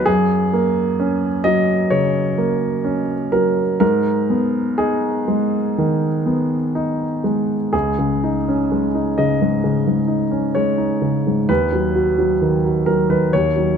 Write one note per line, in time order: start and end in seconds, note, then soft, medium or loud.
0.06 1.88 F#2 medium
0.06 1.45 G#4 medium
0.53 1.27 A#3 medium
1.00 1.73 C#4 medium
1.44 2.19 F#3 medium
1.44 1.91 D#5 medium
1.90 2.66 C#3 soft
1.90 3.32 C#5 medium
2.38 3.13 A#3 soft
2.84 3.62 C#4 medium
3.32 3.82 F#3 soft
3.32 3.79 A#4 medium
3.80 5.72 G#2 medium
3.80 4.78 A#4 medium
4.30 5.08 B3 soft
4.78 5.57 D#4 medium
4.78 7.23 G#4 medium
5.28 6.06 G#3 soft
5.78 6.55 D#3 medium
6.26 7.04 B3 soft
6.75 7.54 D#4 soft
7.24 7.73 G#3 soft
7.73 9.61 C#2 medium
7.73 9.18 G#4 medium
7.99 8.37 C#3 soft
8.24 8.62 D#4 soft
8.48 8.86 C#4 soft
8.72 9.10 G#3 soft
8.95 9.33 D#4 soft
9.18 9.56 C#3 soft
9.18 10.56 D#5 medium
9.42 9.79 G#2 soft
9.64 10.01 C#3 soft
9.87 10.24 G#2 soft
10.08 10.46 D#4 soft
10.31 10.69 C#4 soft
10.55 10.93 G#3 soft
10.55 11.48 C#5 medium
10.78 11.16 D#4 soft
11.02 11.39 C#3 soft
11.27 11.50 G#2 soft
11.49 13.28 D#2 soft
11.49 12.87 B4 medium
11.72 12.09 F#3 soft
11.95 12.32 F#4 soft
12.18 12.55 F#3 soft
12.42 12.78 D#3 soft
12.65 13.01 F#4 soft
12.86 13.23 F#3 soft
12.86 13.09 A#4 medium
13.10 13.46 D#3 soft
13.10 13.32 B4 medium
13.33 13.77 D#2 soft
13.33 13.77 C#5 medium
13.57 13.77 F#3 soft